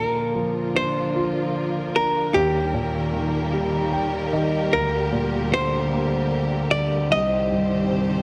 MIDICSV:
0, 0, Header, 1, 4, 480
1, 0, Start_track
1, 0, Key_signature, -2, "major"
1, 0, Tempo, 795756
1, 1414, Time_signature, 6, 3, 24, 8
1, 4958, End_track
2, 0, Start_track
2, 0, Title_t, "Hollow-body jazz guitar"
2, 0, Program_c, 0, 26
2, 0, Note_on_c, 0, 70, 73
2, 459, Note_off_c, 0, 70, 0
2, 461, Note_on_c, 0, 72, 78
2, 1154, Note_off_c, 0, 72, 0
2, 1181, Note_on_c, 0, 70, 72
2, 1413, Note_on_c, 0, 67, 66
2, 1425, Note_off_c, 0, 70, 0
2, 2587, Note_off_c, 0, 67, 0
2, 2853, Note_on_c, 0, 70, 68
2, 3306, Note_off_c, 0, 70, 0
2, 3339, Note_on_c, 0, 72, 78
2, 4045, Note_off_c, 0, 72, 0
2, 4048, Note_on_c, 0, 74, 79
2, 4291, Note_off_c, 0, 74, 0
2, 4293, Note_on_c, 0, 75, 73
2, 4958, Note_off_c, 0, 75, 0
2, 4958, End_track
3, 0, Start_track
3, 0, Title_t, "String section"
3, 0, Program_c, 1, 48
3, 0, Note_on_c, 1, 50, 58
3, 0, Note_on_c, 1, 53, 53
3, 0, Note_on_c, 1, 58, 56
3, 0, Note_on_c, 1, 65, 53
3, 0, Note_on_c, 1, 70, 67
3, 1399, Note_off_c, 1, 53, 0
3, 1400, Note_off_c, 1, 65, 0
3, 1401, Note_off_c, 1, 50, 0
3, 1411, Note_on_c, 1, 55, 58
3, 1412, Note_on_c, 1, 51, 64
3, 1414, Note_on_c, 1, 67, 59
3, 2836, Note_off_c, 1, 51, 0
3, 2851, Note_on_c, 1, 50, 61
3, 4261, Note_off_c, 1, 70, 0
3, 4262, Note_off_c, 1, 58, 0
3, 4271, Note_off_c, 1, 50, 0
3, 4283, Note_on_c, 1, 72, 69
3, 4284, Note_on_c, 1, 51, 65
3, 4284, Note_on_c, 1, 60, 58
3, 4958, Note_off_c, 1, 51, 0
3, 4958, Note_off_c, 1, 55, 0
3, 4958, Note_off_c, 1, 60, 0
3, 4958, Note_off_c, 1, 67, 0
3, 4958, Note_off_c, 1, 72, 0
3, 4958, End_track
4, 0, Start_track
4, 0, Title_t, "Grand piano"
4, 0, Program_c, 2, 0
4, 0, Note_on_c, 2, 46, 53
4, 67, Control_c, 2, 64, 127
4, 210, Note_on_c, 2, 53, 42
4, 450, Note_on_c, 2, 62, 42
4, 700, Note_on_c, 2, 65, 45
4, 1149, Note_off_c, 2, 53, 0
4, 1170, Note_off_c, 2, 62, 0
4, 1179, Note_on_c, 2, 62, 44
4, 1389, Note_off_c, 2, 46, 0
4, 1396, Note_off_c, 2, 65, 0
4, 1409, Note_off_c, 2, 62, 0
4, 1417, Note_on_c, 2, 39, 56
4, 1421, Control_c, 2, 64, 0
4, 1527, Control_c, 2, 64, 127
4, 1651, Note_on_c, 2, 46, 47
4, 1890, Note_on_c, 2, 51, 46
4, 2131, Note_on_c, 2, 55, 45
4, 2367, Note_on_c, 2, 79, 50
4, 2586, Note_off_c, 2, 46, 0
4, 2592, Note_off_c, 2, 79, 0
4, 2602, Note_off_c, 2, 51, 0
4, 2610, Note_on_c, 2, 75, 56
4, 2611, Note_on_c, 2, 51, 45
4, 2828, Note_off_c, 2, 39, 0
4, 2828, Note_off_c, 2, 55, 0
4, 2833, Note_off_c, 2, 75, 0
4, 2844, Note_off_c, 2, 51, 0
4, 2850, Note_on_c, 2, 38, 55
4, 2858, Control_c, 2, 64, 0
4, 2963, Control_c, 2, 64, 127
4, 3090, Note_on_c, 2, 46, 47
4, 3325, Note_on_c, 2, 50, 50
4, 3572, Note_on_c, 2, 58, 47
4, 4022, Note_off_c, 2, 46, 0
4, 4040, Note_off_c, 2, 50, 0
4, 4049, Note_on_c, 2, 50, 45
4, 4261, Note_off_c, 2, 38, 0
4, 4266, Note_off_c, 2, 58, 0
4, 4279, Note_off_c, 2, 50, 0
4, 4285, Note_on_c, 2, 36, 54
4, 4292, Control_c, 2, 64, 0
4, 4415, Control_c, 2, 64, 127
4, 4529, Note_on_c, 2, 43, 43
4, 4766, Note_on_c, 2, 48, 46
4, 4958, Note_off_c, 2, 36, 0
4, 4958, Note_off_c, 2, 43, 0
4, 4958, Note_off_c, 2, 48, 0
4, 4958, End_track
0, 0, End_of_file